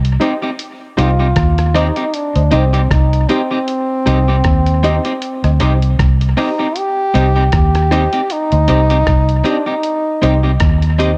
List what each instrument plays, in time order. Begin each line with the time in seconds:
Already playing: fingered electric bass C2
0.05 closed hi-hat
0.20 clean electric guitar C4 D#4 G4, synth stab D#4 G4 C5 D#5, closed hi-hat
0.42 clean electric guitar C4 D#4 G4
0.59 closed hi-hat
0.97 fingered electric bass C2, clean electric guitar C4 D#4 G4, synth stab D#4 G4 C5 D#5, trombone F4, closed hi-hat
1.19 clean electric guitar C4 D#4 G4
1.36 fingered electric bass D#2, kick, cross-stick, closed hi-hat
1.58 cross-stick, closed hi-hat
1.74 clean electric guitar C4 D#4 G4, synth stab D#4 G4 C5 D#5, trombone D#4, cross-stick, closed hi-hat
1.96 clean electric guitar C4 D#4 G4, closed hi-hat
2.14 trombone D4, closed hi-hat
2.36 fingered electric bass D2, synth stab C5 D#5, closed hi-hat
2.51 fingered electric bass C2, clean electric guitar C4 D#4 G4, trombone C4, synth stab D#4 G4 C5 D#5, closed hi-hat
2.73 clean electric guitar C4 D#4 G4, closed hi-hat
2.91 fingered electric bass C2, trombone D#4, kick, cross-stick, closed hi-hat
3.13 closed hi-hat
3.29 clean electric guitar C4 D#4 G4, trombone C4, synth stab D#4 G4 C5 D#5, closed hi-hat
3.51 clean electric guitar C4 D#4 G4
3.68 closed hi-hat
4.06 fingered electric bass C2, clean electric guitar C4 D#4 G4, synth stab D#4 G4 C5 D#5, closed hi-hat
4.28 clean electric guitar C4 D#4 G4
4.44 fingered electric bass D#2, kick, cross-stick, closed hi-hat
4.66 closed hi-hat
4.83 clean electric guitar C4 D#4 G4, synth stab D#4 G4 C5 D#5, closed hi-hat
5.05 clean electric guitar C4 D#4 G4, closed hi-hat
5.22 closed hi-hat
5.44 fingered electric bass D2, synth stab C5 D#5, cross-stick, closed hi-hat
5.60 fingered electric bass C2, clean electric guitar C4 D#4 G4, synth stab D#4 G4 C5 D#5, closed hi-hat
5.82 closed hi-hat
5.99 fingered electric bass C2, kick, cross-stick, closed hi-hat
6.21 closed hi-hat
6.37 clean electric guitar C4 D#4 G4, synth stab D#4 G4 C5 D#5, trombone D#4, cross-stick, open hi-hat
6.59 clean electric guitar C4 D#4 G4
6.76 trombone G4, closed hi-hat
7.14 fingered electric bass C2, clean electric guitar C4 D#4 G4, synth stab D#4 G4 C5 D#5, closed hi-hat
7.36 clean electric guitar C4 D#4 G4
7.52 fingered electric bass D#2, trombone G4, kick, cross-stick, closed hi-hat
7.75 cross-stick, closed hi-hat
7.91 clean electric guitar C4 D#4 G4, synth stab D#4 G4 C5 D#5, cross-stick, closed hi-hat
8.13 clean electric guitar C4 D#4 G4, closed hi-hat
8.30 trombone D#4, closed hi-hat
8.52 fingered electric bass D2, synth stab C5 D#5, closed hi-hat
8.68 fingered electric bass C2, clean electric guitar C4 D#4 G4, synth stab D#4 G4 C5 D#5, closed hi-hat
8.90 clean electric guitar C4 D#4 G4, closed hi-hat
9.07 fingered electric bass C2, kick, cross-stick, closed hi-hat
9.29 closed hi-hat
9.44 clean electric guitar C4 D#4 G4, trombone D4, synth stab D#4 G4 C5 D#5, closed hi-hat
9.66 clean electric guitar C4 D#4 G4, trombone D#4
9.83 closed hi-hat
10.22 fingered electric bass C2, clean electric guitar C4 D#4 G4, synth stab D#4 G4 C5 D#5, closed hi-hat
10.43 clean electric guitar C4 D#4 G4
10.60 fingered electric bass D#2, kick, cross-stick, closed hi-hat
10.82 closed hi-hat
10.99 clean electric guitar C4 D#4 G4, synth stab D#4 G4 C5 D#5, closed hi-hat